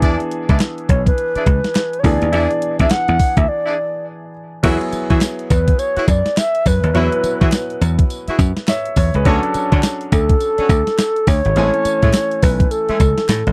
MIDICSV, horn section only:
0, 0, Header, 1, 2, 480
1, 0, Start_track
1, 0, Tempo, 576923
1, 18, Time_signature, 4, 2, 24, 8
1, 11251, End_track
2, 0, Start_track
2, 0, Title_t, "Horn section"
2, 0, Program_c, 0, 61
2, 19, Note_on_c, 0, 64, 84
2, 22, Note_on_c, 0, 68, 77
2, 23, Note_on_c, 0, 62, 92
2, 23, Note_on_c, 0, 74, 100
2, 142, Note_off_c, 0, 64, 0
2, 144, Note_off_c, 0, 68, 0
2, 145, Note_off_c, 0, 62, 0
2, 145, Note_off_c, 0, 74, 0
2, 405, Note_on_c, 0, 64, 79
2, 407, Note_on_c, 0, 68, 73
2, 410, Note_on_c, 0, 62, 80
2, 410, Note_on_c, 0, 74, 87
2, 483, Note_off_c, 0, 64, 0
2, 484, Note_off_c, 0, 68, 0
2, 486, Note_off_c, 0, 62, 0
2, 486, Note_off_c, 0, 74, 0
2, 1125, Note_on_c, 0, 64, 78
2, 1128, Note_on_c, 0, 68, 69
2, 1130, Note_on_c, 0, 62, 74
2, 1130, Note_on_c, 0, 74, 80
2, 1203, Note_off_c, 0, 64, 0
2, 1205, Note_off_c, 0, 68, 0
2, 1206, Note_off_c, 0, 62, 0
2, 1206, Note_off_c, 0, 74, 0
2, 1937, Note_on_c, 0, 64, 95
2, 1941, Note_on_c, 0, 68, 83
2, 1943, Note_on_c, 0, 62, 89
2, 1943, Note_on_c, 0, 74, 97
2, 2061, Note_off_c, 0, 64, 0
2, 2063, Note_off_c, 0, 68, 0
2, 2064, Note_off_c, 0, 62, 0
2, 2064, Note_off_c, 0, 74, 0
2, 2324, Note_on_c, 0, 64, 81
2, 2326, Note_on_c, 0, 68, 69
2, 2329, Note_on_c, 0, 62, 83
2, 2329, Note_on_c, 0, 74, 90
2, 2403, Note_off_c, 0, 64, 0
2, 2404, Note_off_c, 0, 68, 0
2, 2405, Note_off_c, 0, 62, 0
2, 2405, Note_off_c, 0, 74, 0
2, 3044, Note_on_c, 0, 64, 78
2, 3047, Note_on_c, 0, 68, 74
2, 3050, Note_on_c, 0, 62, 79
2, 3050, Note_on_c, 0, 74, 85
2, 3123, Note_off_c, 0, 64, 0
2, 3124, Note_off_c, 0, 68, 0
2, 3126, Note_off_c, 0, 62, 0
2, 3126, Note_off_c, 0, 74, 0
2, 3857, Note_on_c, 0, 66, 96
2, 3860, Note_on_c, 0, 68, 84
2, 3861, Note_on_c, 0, 64, 95
2, 3861, Note_on_c, 0, 76, 104
2, 3981, Note_off_c, 0, 66, 0
2, 3983, Note_off_c, 0, 68, 0
2, 3984, Note_off_c, 0, 64, 0
2, 3984, Note_off_c, 0, 76, 0
2, 4244, Note_on_c, 0, 66, 77
2, 4246, Note_on_c, 0, 68, 70
2, 4249, Note_on_c, 0, 64, 82
2, 4249, Note_on_c, 0, 76, 89
2, 4322, Note_off_c, 0, 66, 0
2, 4324, Note_off_c, 0, 68, 0
2, 4325, Note_off_c, 0, 64, 0
2, 4325, Note_off_c, 0, 76, 0
2, 4964, Note_on_c, 0, 66, 78
2, 4966, Note_on_c, 0, 68, 73
2, 4969, Note_on_c, 0, 64, 80
2, 4969, Note_on_c, 0, 76, 86
2, 5043, Note_off_c, 0, 66, 0
2, 5044, Note_off_c, 0, 68, 0
2, 5045, Note_off_c, 0, 64, 0
2, 5045, Note_off_c, 0, 76, 0
2, 5776, Note_on_c, 0, 66, 90
2, 5779, Note_on_c, 0, 68, 84
2, 5781, Note_on_c, 0, 64, 94
2, 5781, Note_on_c, 0, 76, 102
2, 5901, Note_off_c, 0, 66, 0
2, 5902, Note_off_c, 0, 68, 0
2, 5904, Note_off_c, 0, 64, 0
2, 5904, Note_off_c, 0, 76, 0
2, 6165, Note_on_c, 0, 66, 80
2, 6167, Note_on_c, 0, 68, 74
2, 6171, Note_on_c, 0, 64, 80
2, 6171, Note_on_c, 0, 76, 87
2, 6243, Note_off_c, 0, 66, 0
2, 6244, Note_off_c, 0, 68, 0
2, 6246, Note_off_c, 0, 64, 0
2, 6246, Note_off_c, 0, 76, 0
2, 6886, Note_on_c, 0, 66, 77
2, 6889, Note_on_c, 0, 68, 71
2, 6891, Note_on_c, 0, 64, 79
2, 6891, Note_on_c, 0, 76, 86
2, 6964, Note_off_c, 0, 66, 0
2, 6965, Note_off_c, 0, 68, 0
2, 6966, Note_off_c, 0, 64, 0
2, 6966, Note_off_c, 0, 76, 0
2, 7699, Note_on_c, 0, 62, 100
2, 7702, Note_on_c, 0, 66, 90
2, 7705, Note_on_c, 0, 61, 95
2, 7705, Note_on_c, 0, 73, 103
2, 7823, Note_off_c, 0, 62, 0
2, 7824, Note_off_c, 0, 66, 0
2, 7825, Note_off_c, 0, 61, 0
2, 7825, Note_off_c, 0, 73, 0
2, 8086, Note_on_c, 0, 62, 81
2, 8088, Note_on_c, 0, 66, 70
2, 8090, Note_on_c, 0, 61, 79
2, 8090, Note_on_c, 0, 73, 86
2, 8164, Note_off_c, 0, 62, 0
2, 8165, Note_off_c, 0, 66, 0
2, 8166, Note_off_c, 0, 61, 0
2, 8166, Note_off_c, 0, 73, 0
2, 8806, Note_on_c, 0, 62, 74
2, 8808, Note_on_c, 0, 66, 71
2, 8811, Note_on_c, 0, 61, 76
2, 8811, Note_on_c, 0, 73, 83
2, 8884, Note_off_c, 0, 62, 0
2, 8885, Note_off_c, 0, 66, 0
2, 8886, Note_off_c, 0, 61, 0
2, 8886, Note_off_c, 0, 73, 0
2, 9617, Note_on_c, 0, 57, 90
2, 9620, Note_on_c, 0, 61, 86
2, 9622, Note_on_c, 0, 56, 95
2, 9622, Note_on_c, 0, 68, 104
2, 9741, Note_off_c, 0, 57, 0
2, 9743, Note_off_c, 0, 61, 0
2, 9744, Note_off_c, 0, 56, 0
2, 9744, Note_off_c, 0, 68, 0
2, 10004, Note_on_c, 0, 57, 80
2, 10005, Note_on_c, 0, 61, 69
2, 10008, Note_on_c, 0, 56, 87
2, 10008, Note_on_c, 0, 68, 95
2, 10083, Note_off_c, 0, 57, 0
2, 10083, Note_off_c, 0, 61, 0
2, 10085, Note_off_c, 0, 56, 0
2, 10085, Note_off_c, 0, 68, 0
2, 10724, Note_on_c, 0, 57, 75
2, 10726, Note_on_c, 0, 61, 65
2, 10729, Note_on_c, 0, 56, 78
2, 10729, Note_on_c, 0, 68, 85
2, 10803, Note_off_c, 0, 57, 0
2, 10804, Note_off_c, 0, 61, 0
2, 10805, Note_off_c, 0, 56, 0
2, 10805, Note_off_c, 0, 68, 0
2, 11251, End_track
0, 0, End_of_file